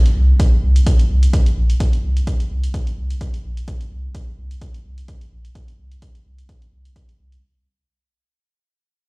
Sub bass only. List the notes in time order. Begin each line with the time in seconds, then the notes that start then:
0.16 C2
0.63 C2
1.10 C2
1.57 A#1
2.04 C2
2.51 C2
2.97 C2
3.44 A#1
3.91 C2
4.38 C2
4.85 C2
5.32 A#1
5.79 C2
6.26 C2
6.73 C2
7.19 C2